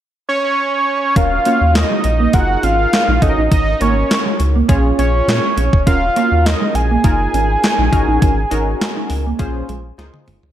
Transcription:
0.29 analog synth lead C#5
1.16 sub bass D#1, analog polysynth C#4 F4 F#4 A#4, clean electric guitar C#4, analog synth lead F5, kick, closed hi-hat
1.45 clean electric guitar A#3, analog polysynth C#4 F4 F#4 C#5, closed hi-hat
1.61 sub bass D#2, muted clean electric guitar stroke
1.75 analog synth lead D#5, snare, clap, closed hi-hat
1.91 clean electric guitar G#3
2.04 sub bass A#1, muted clean electric guitar stroke, closed hi-hat
2.20 clean electric guitar A#3
2.33 sub bass F#1, analog polysynth D#4 F4 G#4 A#4, analog synth lead F#5, kick, closed hi-hat
2.63 sub bass G#1, clean electric guitar C#4, analog synth lead F5, closed hi-hat
2.93 snare, clap, closed hi-hat
3.08 sub bass A#1, clean electric guitar D#4
3.22 sub bass G#1, analog polysynth C#4 D#4 F#4 A4, analog synth lead D#5, muted clean electric guitar stroke, kick, closed hi-hat
3.29 analog polysynth A#4
3.38 sub bass A1, clean electric guitar D#4
3.52 sub bass G#1, clean electric guitar C#4, analog synth lead D#5, kick, closed hi-hat
3.80 sub bass G#1, clean electric guitar A#3, analog polysynth C#4 D#4 F#4 A#4, analog synth lead C#5, closed hi-hat
3.97 muted clean electric guitar stroke
4.11 snare, clap, closed hi-hat
4.26 clean electric guitar G#3
4.40 sub bass C#2, muted clean electric guitar stroke, closed hi-hat
4.56 clean electric guitar A#3
4.68 sub bass A#1, analog polysynth C#4 F4 G#4 C#5, kick, closed hi-hat
4.98 sub bass A#1, clean electric guitar C#4, analog synth lead C#5, closed hi-hat
5.28 sub bass A#2, snare, clap, closed hi-hat
5.57 sub bass A#1, clean electric guitar C#4, closed hi-hat
5.73 sub bass E1, kick
5.86 sub bass D#1, analog polysynth C#4 F4 F#4 A#4, clean electric guitar C#4, analog synth lead F5, kick, closed hi-hat
6.16 clean electric guitar A#3, analog polysynth C#4 F4 F#4 A#4, closed hi-hat
6.32 sub bass D#2, muted clean electric guitar stroke
6.46 analog synth lead D#5, snare, clap, closed hi-hat
6.61 clean electric guitar G#3
6.74 sub bass A#1, analog synth lead G#5, muted clean electric guitar stroke, closed hi-hat
6.91 clean electric guitar A#3
7.04 sub bass F#1, analog polysynth D#4 F4 G#4 A#4, kick, closed hi-hat
7.34 sub bass G#1, clean electric guitar C#4, closed hi-hat
7.64 snare, clap, closed hi-hat
7.79 sub bass A#1, clean electric guitar D#4
7.92 sub bass G#1, analog polysynth C#4 D#4 F#4 A#4, muted clean electric guitar stroke, kick, closed hi-hat
8.08 sub bass A1, clean electric guitar D#4
8.22 sub bass G#1, clean electric guitar C#4, kick, closed hi-hat
8.51 sub bass G#1, analog polysynth C#4 D#4 F#4 A#4, clean electric guitar D#4, closed hi-hat
8.67 muted clean electric guitar stroke
8.81 snare, clap, closed hi-hat
8.96 clean electric guitar D#4
9.10 sub bass C#2, muted clean electric guitar stroke, open hi-hat
9.26 clean electric guitar A#3
9.39 sub bass A#1, analog polysynth C#4 F4 G#4 C5, kick, closed hi-hat
9.69 sub bass A#1, clean electric guitar G#3, closed hi-hat
9.98 sub bass C#2, analog polysynth D#4 F4 G#4 C5, snare, closed hi-hat
10.14 high tom
10.28 sub bass D#1, clean electric guitar G#3, mid tom, open hi-hat
10.43 sub bass D2, floor tom

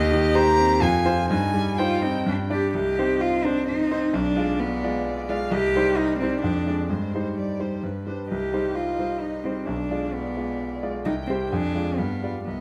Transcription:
Already playing: grand piano D#2, cello G4, violin D#5
0.12 grand piano D#3
0.35 grand piano G4 C5, violin A#5
0.58 grand piano C4
0.80 grand piano F2, cello F4, violin G#5
1.05 grand piano F4 C5
1.30 grand piano G2, cello D#4, violin G#5
1.54 grand piano G3
1.78 grand piano D#4 C5, cello F4, violin G5
2.02 grand piano C4, cello D#4
2.26 grand piano G2, cello D4
2.50 grand piano D4 D5, cello G4
2.74 grand piano C2, cello G4, violin D#5
2.98 grand piano C4 D#4 C5
3.21 cello F4
3.44 grand piano C4 D#4 C5, cello D4
3.66 cello D#4, violin C5
3.90 grand piano C4 D#4 C5, violin C5
4.12 grand piano B1, cello D4, violin D5
4.36 grand piano G#3 F4 D5
4.60 cello B3
4.84 grand piano G#3 F4 D5
5.06 violin D5
5.29 grand piano G#3 F4 D5, violin F5
5.51 grand piano C2, cello G4, violin D#5
5.75 grand piano G3 D#4 C5, violin D5
5.98 cello D#4
6.20 grand piano G3 D#4 C5, cello C4
6.42 grand piano F2, cello D4
6.66 grand piano G#3 D4 D5
6.89 grand piano G2, cello G#3, violin C5
7.14 grand piano G3 D#4 C5
7.37 cello G3, violin D5
7.59 grand piano G3 D#4 C5, violin C5
7.83 grand piano G2, violin B4
8.07 grand piano G3 D4 B4, violin C5
8.29 grand piano C2, cello G4, violin D#5
8.53 grand piano G3 D#4 C5
8.75 cello F4
8.99 grand piano G3 D#4 C5
9.21 cello D#4
9.44 grand piano G3 D#4 C5, cello C4
9.66 grand piano B1, cello D4, violin D5
9.90 grand piano G#3 F4 D5
10.13 cello B3
10.37 grand piano G#3 F4 D5
10.83 grand piano G#3 F4 D5
11.05 grand piano C2, cello D#4, violin G5
11.27 grand piano G3 G4 C5, cello C4
11.50 grand piano F2, cello D4, violin G#5
11.75 grand piano G#3 F4 D5
11.97 grand piano G2, cello B3, violin F5
12.23 grand piano G3 F4 D5
12.45 grand piano C2, cello B3, violin D#5

